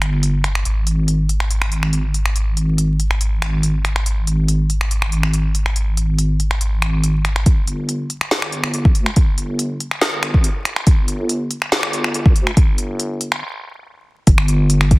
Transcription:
Already playing: G1
0.02 finger snap, closed hi-hat
0.23 closed hi-hat
0.44 finger snap, closed hi-hat
0.55 finger snap
0.65 G#1, closed hi-hat
0.87 closed hi-hat
1.08 closed hi-hat
1.29 closed hi-hat
1.40 finger snap
1.51 closed hi-hat
1.62 finger snap
1.72 closed hi-hat
1.83 finger snap
1.93 closed hi-hat
2.14 closed hi-hat
2.26 finger snap
2.36 closed hi-hat
2.57 closed hi-hat
2.78 closed hi-hat
3.00 closed hi-hat
3.11 finger snap
3.21 closed hi-hat
3.42 finger snap, closed hi-hat
3.63 closed hi-hat
3.85 finger snap, closed hi-hat
3.96 finger snap
4.06 closed hi-hat
4.27 closed hi-hat
4.48 closed hi-hat
4.70 closed hi-hat
4.81 finger snap
4.91 closed hi-hat
5.02 finger snap
5.12 closed hi-hat
5.23 finger snap
5.34 closed hi-hat
5.55 closed hi-hat
5.66 finger snap
5.76 closed hi-hat
5.97 closed hi-hat
6.18 closed hi-hat
6.40 closed hi-hat
6.51 finger snap
6.61 closed hi-hat
6.82 finger snap, closed hi-hat
7.04 closed hi-hat
7.25 finger snap, closed hi-hat
7.36 finger snap
7.46 G1, kick, closed hi-hat
7.67 closed hi-hat
7.89 closed hi-hat
8.10 closed hi-hat
8.21 finger snap
8.31 snare, closed hi-hat
8.42 finger snap
8.52 closed hi-hat
8.64 finger snap
8.74 closed hi-hat
8.85 G#1, kick
8.95 D2, closed hi-hat
9.06 finger snap
9.16 G1, kick, closed hi-hat
9.38 closed hi-hat
9.59 closed hi-hat
9.80 closed hi-hat
9.91 finger snap
10.01 snare, closed hi-hat
10.23 finger snap, closed hi-hat
10.34 G#1, kick
10.44 closed hi-hat
10.65 finger snap, closed hi-hat
10.76 finger snap
10.87 G1, kick, closed hi-hat
11.08 closed hi-hat
11.29 closed hi-hat
11.51 closed hi-hat
11.62 finger snap
11.72 snare, closed hi-hat
11.83 finger snap
11.93 closed hi-hat
12.04 finger snap
12.14 closed hi-hat
12.26 G#1, kick
12.36 D2, closed hi-hat
12.47 finger snap
12.57 G1, kick, closed hi-hat
12.78 closed hi-hat
13.00 closed hi-hat
13.21 closed hi-hat
13.32 finger snap
14.27 G1, kick, closed hi-hat
14.38 finger snap
14.48 closed hi-hat
14.70 closed hi-hat
14.81 finger snap
14.91 kick, closed hi-hat

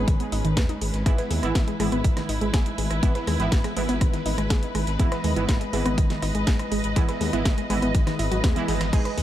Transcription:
Already playing: G#3 C#4 D#4 G#4 B4
0.08 G#1 D#3 D#4, kick, closed hi-hat
0.20 B3 B4, closed hi-hat
0.32 G#1 D#4 D#5, closed hi-hat, open hi-hat
0.45 G#1 D#3 D#4, closed hi-hat
0.57 D#2 B4 B5, kick, snare, closed hi-hat
0.69 D#4 D#5, closed hi-hat
0.81 G#1 G#3 G#4, closed hi-hat, open hi-hat
0.94 G#1, snare, closed hi-hat
1.06 G#1 E3 G#3 B3 E4 G#4 B4, kick, cross-stick, closed hi-hat
1.18 B4 B5, snare, closed hi-hat
1.31 D#2 G#3 G#4, closed hi-hat, open hi-hat
1.43 G#1 E3 B3 E4, cross-stick, closed hi-hat
1.55 G#1, kick, snare, closed hi-hat
1.68 G#3 G#4, closed hi-hat
1.80 G#1 E3 G#3 B3 E4 G#4, cross-stick, closed hi-hat, open hi-hat
1.92 G#1 B3 B4, closed hi-hat
2.04 G#1 D#3 D#4, kick, closed hi-hat
2.17 D#3 D#4, cross-stick, snare, closed hi-hat
2.29 G#1 D#4 D#5, closed hi-hat, open hi-hat
2.41 G#1 G#3 G#4, closed hi-hat
2.54 G#1 G#4 G#5, kick, cross-stick, snare, closed hi-hat
2.66 closed hi-hat
2.78 G#1 G#3 G#4, closed hi-hat, open hi-hat
2.91 G#1, cross-stick, closed hi-hat
3.03 G#1 E3 G#3 B3 E4 G#4, kick, closed hi-hat
3.15 B4 B5, snare, closed hi-hat
3.27 D#2 G#3 G#4, cross-stick, closed hi-hat, open hi-hat
3.40 G#1 E3 B3 E4, snare, closed hi-hat
3.52 G#1, kick, snare, closed hi-hat
3.64 G#3 G#4, cross-stick, closed hi-hat
3.77 G#1 E3 G#3 B3 E4 G#4, snare, open hi-hat
3.89 G#1 B3 B4, closed hi-hat
4.01 G#1 D#3 D#4, kick, cross-stick, closed hi-hat
4.13 D#3 D#4, snare, closed hi-hat
4.26 G#1 D#4 D#5, closed hi-hat, open hi-hat
4.38 G#1 G#3 G#4, cross-stick, closed hi-hat
4.50 G#1 G#4 G#5, kick, snare, closed hi-hat
4.63 closed hi-hat
4.75 G#1 G#3 G#4, cross-stick, closed hi-hat, open hi-hat
4.87 G#1, snare, closed hi-hat
4.99 G#1 E3 G#3 B3 E4 G#4 D#5, kick, closed hi-hat
5.12 B4 B5, cross-stick, snare, closed hi-hat
5.24 D#2 G#3 G#4, closed hi-hat, open hi-hat
5.36 G#1 E3 B3 E4, closed hi-hat
5.49 G#1, kick, cross-stick, snare, closed hi-hat
5.61 G#3 G#4, closed hi-hat
5.73 G#1 E3 G#3 B3 E4 G#4, closed hi-hat, open hi-hat
5.86 G#1 B3 B4, cross-stick, closed hi-hat
5.98 G#1 D#3 D#4, kick, closed hi-hat
6.10 D#3 D#4, snare, closed hi-hat
6.22 G#1 D#4 D#5, cross-stick, closed hi-hat, open hi-hat
6.35 G#1 G#3 G#4, closed hi-hat
6.47 G#1 G#4 G#5, kick, snare, closed hi-hat
6.59 cross-stick, closed hi-hat
6.72 G#1 G#3 G#4, closed hi-hat, open hi-hat
6.84 G#1, closed hi-hat
6.96 G#1 E3 G#3 B3 E4 G#4, kick, cross-stick, closed hi-hat
7.09 B4 B5, snare, closed hi-hat
7.21 D#2 G#3 G#4, closed hi-hat, open hi-hat
7.33 G#1 E3 B3 E4, cross-stick, closed hi-hat
7.45 G#1, kick, snare, closed hi-hat
7.58 G#3 G#4, closed hi-hat
7.70 G#1 E3 G#3 B3 E4 G#4, cross-stick, closed hi-hat, open hi-hat
7.82 G#1 B3 B4, closed hi-hat
7.95 G#1 D#3 D#4, kick, closed hi-hat, swell
8.07 D#3 D#4, cross-stick, snare, closed hi-hat
8.19 G#1 E4 E5, closed hi-hat, open hi-hat
8.31 G#1 F#3 F#4, closed hi-hat
8.44 D#2 B3 B4, kick, cross-stick, snare, closed hi-hat
8.56 E3 B3 E4, closed hi-hat
8.68 G#1 G#3 G#4, snare, closed hi-hat, open hi-hat
8.81 G#1, cross-stick, snare, closed hi-hat
8.93 G#1 G#3 D#4 G#4, kick, cross-stick, closed hi-hat, crash
9.05 B4 B5, snare, closed hi-hat
9.17 D#2 G#3 G#4, closed hi-hat, open hi-hat

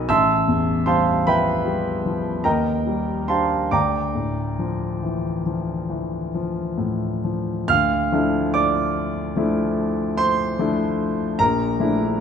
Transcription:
Already playing: B1 F#3 D#4 A#4 D#5 G#5 B5 D#6
0.09 A1 E5 A5 C6 E6
0.48 E2
0.86 G3 C5 F5 A5 C6
1.27 F3 B4 E5 G5 B5
1.65 G3
2.05 F3
2.44 D#2 A#4 D#5 G5 A#5
2.86 G3
3.28 D4 G4 C5 F5 A5 C6
3.71 D2 D5 G5 A#5 D6
4.15 A2
4.59 F3
5.03 E3
5.46 F3
5.90 E3
6.34 F3
6.78 A2
7.24 F3
7.68 D2 F5 F6
8.12 F3 A3 D4 E4
8.54 D5 D6
9.36 F3 A3 D4 E4
10.17 C5 C6
10.59 F3 A3 D4 E4
11.39 A#1 A#4 A#5
11.80 F3 A3 D4 E4

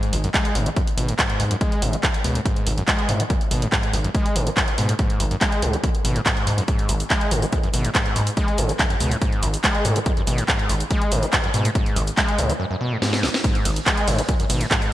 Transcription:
Already playing: G#2
0.03 closed hi-hat
0.13 G#1, open hi-hat
0.24 F#2, closed hi-hat
0.34 G#3, kick, clap, closed hi-hat
0.45 closed hi-hat
0.55 G#1 G#2, open hi-hat
0.66 G#3, closed hi-hat
0.76 F#2, kick, closed hi-hat
0.87 closed hi-hat
0.98 G#1 B2, open hi-hat
1.08 G#2, closed hi-hat
1.19 G#2, kick, clap, closed hi-hat
1.30 closed hi-hat
1.40 G#1 G#2, open hi-hat
1.51 F#2, closed hi-hat
1.61 G#3, kick, closed hi-hat
1.72 closed hi-hat
1.82 G#1 G#2, open hi-hat
1.93 G#3, closed hi-hat
2.03 F#2, kick, clap, closed hi-hat
2.14 closed hi-hat
2.24 C#2 B2, open hi-hat
2.35 G#2, closed hi-hat
2.45 G#2, kick, closed hi-hat
2.56 closed hi-hat
2.67 G#1, open hi-hat
2.78 F#2, closed hi-hat
2.88 G#3, kick, clap, closed hi-hat
2.99 closed hi-hat
3.09 G#2, open hi-hat
3.20 G#3, closed hi-hat
3.30 F#2, kick, closed hi-hat
3.41 closed hi-hat
3.51 G#1 B2, open hi-hat
3.62 G#2, closed hi-hat
3.72 G#2, kick, clap, closed hi-hat
3.83 closed hi-hat
3.93 G#1, open hi-hat
4.04 F#2, closed hi-hat
4.15 G#3, kick, closed hi-hat
4.26 closed hi-hat
4.36 G#1 G#2, open hi-hat
4.47 G#3, closed hi-hat
4.57 F#2, kick, clap, closed hi-hat
4.68 closed hi-hat
4.78 G#2 B2, open hi-hat
4.89 G#2, closed hi-hat
4.99 G#2, kick, closed hi-hat
5.10 closed hi-hat
5.20 G#1, open hi-hat
5.31 F#2, closed hi-hat
5.41 G#3, kick, clap, closed hi-hat
5.52 closed hi-hat
5.62 C#2 G#2, open hi-hat
5.73 G#3, closed hi-hat
5.83 F#2, kick, closed hi-hat
5.95 closed hi-hat
6.05 G#1 B2, open hi-hat
6.16 G#2, closed hi-hat
6.26 G#2, kick, clap, closed hi-hat
6.37 closed hi-hat
6.47 G#1 G#2, open hi-hat
6.58 F#2, closed hi-hat
6.68 G#2, kick, closed hi-hat, shaker
6.79 closed hi-hat
6.89 G#1, open hi-hat, shaker
7.00 closed hi-hat, shaker
7.10 G#3, kick, clap, closed hi-hat, shaker
7.21 closed hi-hat
7.31 G#1 G#2, open hi-hat, shaker
7.42 G#3, closed hi-hat, shaker
7.52 F#2, kick, closed hi-hat, shaker
7.63 F#2, closed hi-hat
7.74 G#1 B2, open hi-hat, shaker
7.85 G#2, closed hi-hat, shaker
7.95 G#2, kick, clap, closed hi-hat, shaker
8.06 closed hi-hat
8.16 G#1 G#2, open hi-hat, shaker
8.27 closed hi-hat, shaker
8.37 G#3, kick, closed hi-hat, shaker
8.48 closed hi-hat
8.58 G#1 G#2, open hi-hat, shaker
8.69 G#3, closed hi-hat, shaker
8.79 F#2, kick, clap, closed hi-hat, shaker
8.90 F#2, closed hi-hat
9.00 C#2 B2, open hi-hat, shaker
9.11 G#2, closed hi-hat, shaker
9.22 G#2, kick, closed hi-hat, shaker
9.33 closed hi-hat
9.43 G#1, open hi-hat, shaker
9.54 closed hi-hat, shaker
9.64 G#3, kick, clap, closed hi-hat, shaker
9.75 closed hi-hat
9.85 G#2, open hi-hat, shaker
9.96 G#3, closed hi-hat, shaker
10.06 F#2, kick, closed hi-hat, shaker
10.17 F#2, closed hi-hat
10.27 G#1 B2, open hi-hat, shaker
10.38 G#2, closed hi-hat, shaker
10.48 G#2, kick, clap, closed hi-hat, shaker
10.59 closed hi-hat
10.69 G#1, open hi-hat, shaker
10.80 closed hi-hat, shaker
10.91 G#3, kick, closed hi-hat, shaker
11.02 closed hi-hat
11.12 G#1 G#2, open hi-hat, shaker
11.23 G#3, closed hi-hat, shaker
11.33 F#2, kick, clap, closed hi-hat, shaker
11.44 F#2, closed hi-hat
11.54 G#2 B2, open hi-hat, shaker
11.65 G#2, closed hi-hat, shaker
11.75 G#2, kick, closed hi-hat, shaker
11.86 closed hi-hat
11.96 G#1, open hi-hat, shaker
12.07 closed hi-hat, shaker
12.17 G#3, kick, clap, closed hi-hat, shaker
12.29 closed hi-hat
12.39 C#2 G#2, open hi-hat, shaker
12.49 G#3, closed hi-hat, shaker
12.60 F#2
12.71 F#2
12.81 B2
12.92 G#2
13.02 G#2, snare
13.13 snare
13.23 G#1, snare
13.34 snare
13.44 G#2, kick, closed hi-hat, ride, shaker
13.55 closed hi-hat
13.65 G#1, open hi-hat, ride, shaker
13.76 closed hi-hat, shaker
13.86 G#3, kick, clap, closed hi-hat, ride, shaker
13.98 closed hi-hat, shaker
14.07 G#1 G#2, open hi-hat, ride, shaker
14.18 G#3, closed hi-hat, shaker
14.29 F#2, kick, closed hi-hat, ride, shaker
14.40 F#2, closed hi-hat, shaker
14.50 G#1 B2, open hi-hat, ride, shaker
14.61 G#2, closed hi-hat, shaker
14.71 G#2, kick, clap, closed hi-hat, ride, shaker
14.82 closed hi-hat, shaker

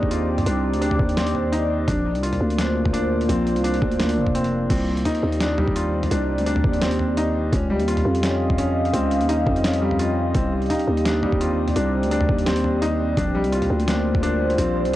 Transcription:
Already playing: D#2 C4 D4 D#4 G4 D5
0.03 kick
0.11 F4, closed hi-hat
0.38 mid tom, open hi-hat
0.46 C2 D4, closed hi-hat
0.73 D2, closed hi-hat
0.81 D4, closed hi-hat
0.91 mid tom
0.99 D#2, kick
1.09 closed hi-hat
1.17 C4, snare, closed hi-hat
1.27 open hi-hat
1.35 mid tom
1.52 D#4, closed hi-hat
1.88 A#1 A#3 D4 F4 C5, kick, closed hi-hat, mid tom
2.15 C2, closed hi-hat
2.23 F4, closed hi-hat
2.33 mid tom, open hi-hat
2.41 D2
2.50 closed hi-hat
2.58 D4, snare, closed hi-hat
2.85 kick, mid tom
2.93 D4, closed hi-hat
3.21 open hi-hat
3.29 A#1 C4, closed hi-hat, mid tom
3.47 closed hi-hat
3.56 C2, closed hi-hat
3.64 D4, closed hi-hat
3.74 open hi-hat
3.82 D2, kick, mid tom
3.92 closed hi-hat
3.99 D4, snare, closed hi-hat
4.09 open hi-hat
4.17 F1
4.27 kick, mid tom
4.35 C4, closed hi-hat
4.44 open hi-hat
4.70 C2 G3 C4 G4 D5, kick, closed hi-hat, crash
4.97 closed hi-hat
5.05 D#4, closed hi-hat, mid tom
5.15 open hi-hat
5.23 D#2
5.32 closed hi-hat
5.40 D4, snare, closed hi-hat
5.58 G3, mid tom
5.68 kick
5.76 F4, closed hi-hat
6.03 mid tom, open hi-hat
6.11 C2 D4, closed hi-hat
6.38 D2, closed hi-hat
6.46 D4, closed hi-hat
6.56 mid tom
6.64 D#2, kick
6.73 closed hi-hat
6.82 C4, snare, closed hi-hat
6.91 open hi-hat
6.99 mid tom
7.17 D#4, closed hi-hat
7.52 C#2 C#4 D#5 F5, kick, closed hi-hat, mid tom
7.70 G3
7.79 D#2, closed hi-hat
7.88 F4, closed hi-hat
7.97 mid tom, open hi-hat
8.05 F2
8.15 closed hi-hat
8.23 C#4, snare, closed hi-hat
8.50 kick, mid tom
8.58 C#4, closed hi-hat
8.85 open hi-hat
8.93 C#2 C4, closed hi-hat, mid tom
9.11 closed hi-hat
9.21 D#2, closed hi-hat
9.29 D#4, closed hi-hat
9.46 F2, kick, mid tom
9.56 closed hi-hat
9.64 C#4, snare, closed hi-hat
9.73 open hi-hat
9.82 G3
9.91 mid tom
9.99 F4, closed hi-hat
10.34 C2 C4 G4 D5, kick, closed hi-hat
10.62 closed hi-hat
10.66 D#4, closed hi-hat
10.70 closed hi-hat, mid tom
10.75 closed hi-hat
10.79 open hi-hat
10.88 D#2
10.97 closed hi-hat
11.05 D4, snare, closed hi-hat
11.23 G3, mid tom
11.32 kick
11.41 F4, closed hi-hat
11.68 mid tom, open hi-hat
11.76 C2 D4, closed hi-hat
12.03 D2, closed hi-hat
12.11 D4, closed hi-hat
12.21 mid tom
12.29 D#2, kick
12.38 closed hi-hat
12.46 C4, snare, closed hi-hat
12.56 open hi-hat
12.64 mid tom
12.82 D#4, closed hi-hat
13.17 A#1 A#3 D4 F4 C5, kick, closed hi-hat, mid tom
13.35 G3
13.44 C2, closed hi-hat
13.52 F4, closed hi-hat
13.62 mid tom, open hi-hat
13.70 D2
13.80 closed hi-hat
13.88 D4, snare, closed hi-hat
14.15 kick, mid tom
14.23 D4, closed hi-hat
14.50 open hi-hat
14.58 A#1 C4, closed hi-hat, mid tom
14.85 C2, closed hi-hat

